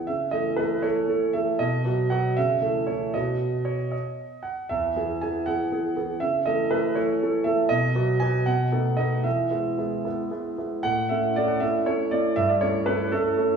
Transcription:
0.07 C#3 E5
0.31 E3 A3 A4 D#5
0.56 E3 A3 A4 B4
0.82 E3 A3 A4 C#5
1.07 E3 A3 A4
1.33 E3 A3 A4 E5
1.59 B2 D#5
1.85 F#3 B3 F#4
2.10 F#3 B3 F#4 F#5
2.37 C#3 E5
2.62 E3 A3 A4
2.87 E3 A3 A4 C#5
3.14 B2 B3 F#4 D#5
3.65 C#5
3.92 D#5
4.43 F#5
4.69 E2 E5
4.96 E3 B3 G#4
5.21 E3 B3 G#4 G#5
5.46 E3 B3 G#4 F#5
5.72 E3 B3 G#4
5.96 E3 B3 G#4
6.20 C#3 E5
6.46 E3 A3 A4 D#5
6.71 E3 A3 A4 B4
6.95 E3 A3 A4 C#5
7.22 E3 A3 A4
7.44 E3 A3 A4 E5
7.69 B2 D#5
7.95 F#3 B3 F#4
8.20 F#3 B3 F#4 G#5
8.46 B2 F#5
8.72 A3 B3 D#4
8.97 A3 B3 D#4 D#5
9.24 E3 E5
9.51 G#3 B3 E4
9.78 G#3 B3 E4
10.05 G#3 B3 E4
10.31 G#3 B3 E4
10.58 G#3 B3 E4
10.83 A2 F#5
11.09 A3 C#4 E4 E5
11.36 A3 C#4 E4 D5
11.48 F#5
11.60 A3 C#4 E4 E5
11.86 A3 C#4 E4 C#5
12.11 A3 C#4 E4 D5
12.36 G2 E5
12.49 D5
12.61 A3 C#4 E4 C#5
12.86 A3 C#4 E4 B4
13.12 A3 C#4 E4 A4
13.37 A3 C#4 E4

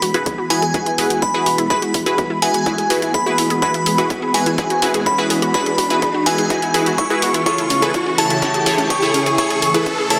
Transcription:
Already playing: E3 G#3 B3 F#4 B5, riser
0.02 E1 F#4, open hi-hat
0.14 E1 E4 F#4 G#4 B4, closed hi-hat
0.26 G#4, kick, closed hi-hat
0.38 F#4
0.50 E1 E4 F#4 G#4 B4 G#5, open hi-hat
0.62 E2 G#4, closed hi-hat
0.74 E4 F#4 G#4 B4, kick, closed hi-hat
0.86 E4, closed hi-hat
0.98 E1 E4 F#4 G#4 B4, open hi-hat
1.10 E2 F#4, closed hi-hat
1.22 E4 B5, kick, closed hi-hat
1.34 E4 F#4 G#4 B4
1.46 E1 F#4, open hi-hat
1.58 E1 E4, closed hi-hat
1.70 E4 F#4 G#4 B4 B5, kick, closed hi-hat
1.82 F#4, closed hi-hat
1.94 E2 E4, kick, open hi-hat
2.06 E1 E4 F#4 G#4 B4, closed hi-hat
2.18 F#4, kick, closed hi-hat
2.30 E4
2.42 E1 E4 F#4 G#4 B4 G#5, open hi-hat
2.54 E1 F#4, closed hi-hat
2.66 E4 F#4 G#4 B4, kick, closed hi-hat
2.78 G#4, closed hi-hat
2.90 G#1 E4 F#4 G#4 B4, open hi-hat
3.02 G#1 E4, closed hi-hat
3.14 G#4 B5, kick, closed hi-hat
3.26 E4 F#4 G#4 B4
3.38 E1 E4, open hi-hat
3.50 E1 G#4, closed hi-hat
3.62 E4 F#4 G#4 B4 B5, kick, closed hi-hat
3.74 E4, closed hi-hat
3.86 E1 G#4, open hi-hat
3.98 E1 E4 F#4 G#4 B4, closed hi-hat
4.10 E4, kick, closed hi-hat
4.22 G#4
4.34 E1 E4 F#4 G#4 B4 G#5, open hi-hat
4.46 E2 E4, closed hi-hat
4.58 E4 F#4 G#4 B4, kick, closed hi-hat
4.70 F#4, closed hi-hat
4.82 E1 E4 F#4 G#4 B4, open hi-hat
4.94 E2 G#4, closed hi-hat
5.06 F#4 B5, kick, closed hi-hat
5.18 E4 F#4 G#4 B4
5.30 E1 G#4, open hi-hat
5.42 E1 F#4, closed hi-hat
5.54 E4 F#4 G#4 B4 B5, kick, closed hi-hat
5.66 G#4, closed hi-hat
5.78 E2 F#4, kick, open hi-hat
5.90 E1 E4 F#4 G#4 B4, closed hi-hat
6.02 G#4, kick, closed hi-hat
6.14 F#4
6.26 E1 E4 F#4 G#4 B4 G#5, open hi-hat
6.38 E1 G#4, closed hi-hat
6.50 E4 F#4 G#4 B4, kick, closed hi-hat
6.62 E4, closed hi-hat
6.74 G#1 E4 F#4 G#4 B4, open hi-hat
6.86 G#1 F#4, closed hi-hat
6.98 E4 C#6, kick, closed hi-hat
7.10 E4 F#4 G#4 B4
7.22 E1 F#4, open hi-hat
7.34 E1 E4, closed hi-hat
7.46 C#3 E3 A3 E4 G#4 A4 C#5 C#6, kick, closed hi-hat
7.58 E4, closed hi-hat
7.70 A1 C#4, open hi-hat
7.82 A1 E4 G#4 A4 B4, closed hi-hat
7.94 E4, kick, closed hi-hat
8.06 C#4
8.18 A1 E4 G#4 A4 C#5 A5, open hi-hat
8.30 A2 E4, closed hi-hat
8.42 C#4 E4 G#4 A4 C#5, kick, closed hi-hat
8.54 G#4, closed hi-hat
8.66 A1 E4 G#4 A4 C#5, open hi-hat
8.78 A2 C#4, closed hi-hat
8.90 G#4 C#6, kick, closed hi-hat
9.02 E4 G#4 A4 C#5
9.14 A1 C#4, open hi-hat
9.26 A1 G#4, closed hi-hat
9.38 E4 G#4 A4 C#5 C#6, kick, closed hi-hat
9.50 C#4, closed hi-hat
9.62 A2 G#4, open hi-hat
9.74 A1 E4 G#4 A4 B4, closed hi-hat
9.86 C#4, kick, closed hi-hat
9.98 G#4
10.10 A1 E4 G#4 A4 C#5 A5, open hi-hat

